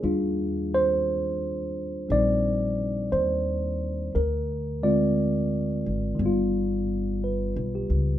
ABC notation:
X:1
M:4/4
L:1/8
Q:"Swing" 1/4=58
K:Eb
V:1 name="Tine electric piano"
A c3 d2 c2 | B d4 z =B G |]
V:2 name="Tine electric piano"
[E,G,DF]4 [G,CE]4 | z [D,A,CF]3 [E,G,=B,F]4 |]
V:3 name="Upright bass" clef=bass
E,,4 B,,,2 E,,2 | D,,3 A,,, G,,,2- (3G,,, =B,,, _D,, |]